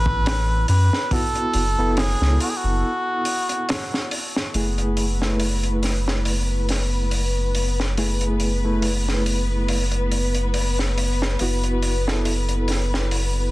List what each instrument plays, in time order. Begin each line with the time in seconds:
Already playing: sub bass A1, reed electric piano B3 E4 A4, muted trumpet B4
0.06 kick
0.26 snare, open hi-hat
0.68 sub bass F#2, muted trumpet B4, open hi-hat
0.93 snare
1.11 reed electric piano B3 E4 F#4, muted trumpet A4, kick, open hi-hat
1.35 closed hi-hat
1.54 sub bass F#1, open hi-hat
1.78 sub bass F#1, reed electric piano B3 E4 A4
1.97 muted trumpet G#4, snare, open hi-hat
2.21 sub bass C#2, snare
2.40 muted trumpet F#4, open hi-hat
2.50 muted trumpet G#4
2.57 muted trumpet F#4
2.64 sub bass F#1
3.25 open hi-hat
3.49 closed hi-hat
3.69 snare, open hi-hat
3.94 snare
4.11 open hi-hat
4.36 snare
4.54 sub bass F#1, reed electric piano A3 E4 G#4, string section B3 B4, open hi-hat
4.78 closed hi-hat
4.97 open hi-hat
5.21 reed electric piano A3 E4 B4, snare
5.40 open hi-hat
5.63 closed hi-hat
5.83 snare, open hi-hat
6.08 snare
6.25 open hi-hat
6.69 snare, open hi-hat
7.11 open hi-hat
7.55 open hi-hat
7.80 snare
7.97 reed electric piano A3 E4 G#4, open hi-hat
8.21 closed hi-hat
8.40 open hi-hat
8.64 reed electric piano A3 E4 B4
8.82 open hi-hat
9.08 snare
9.26 open hi-hat
9.68 open hi-hat
9.91 closed hi-hat
10.12 open hi-hat
10.35 closed hi-hat
10.54 open hi-hat
10.79 snare
10.98 open hi-hat
11.22 snare
11.39 sub bass F#1, reed electric piano B3 E4 F#4, open hi-hat
11.64 closed hi-hat
11.83 open hi-hat
12.07 reed electric piano B3 E4 A4, snare
12.25 open hi-hat
12.49 closed hi-hat
12.68 snare, open hi-hat
12.94 snare
13.11 open hi-hat